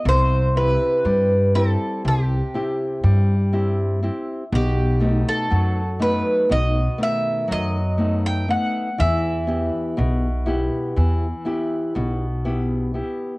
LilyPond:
<<
  \new Staff \with { instrumentName = "Bouzouki" } { \time 9/8 \key e \minor \tempo 4. = 40 c''8 b'4 a'8 g'2 r8 | g'8. a'8. b'8 dis''8 e''8 dis''8. g''16 fis''8 | e''1 r8 | }
  \new Staff \with { instrumentName = "Nylon-string guitar" } { \time 9/8 \key e \minor c8 <c' e' g'>8 g8 <c' e' g'>8 c8 <c' e' g'>8 g8 <c' e' g'>8 <c' e' g'>8 | b,8 <a b dis'>8 fis8 <a b dis'>8 b,8 <dis a b>8 fis8 <a b dis'>8 <a b dis'>8 | e8 <b e' g'>8 b,8 <b e' g'>8 e8 <b e' g'>8 b,8 <b e' g'>8 <b e' g'>8 | }
  \new Staff \with { instrumentName = "Upright bass" } { \clef bass \time 9/8 \key e \minor c,4 g,4 c,8 r8 g,4. | b,,4 fis,4 b,,8 r8 fis,4. | e,4 b,,4 e,8 r8 b,,4. | }
>>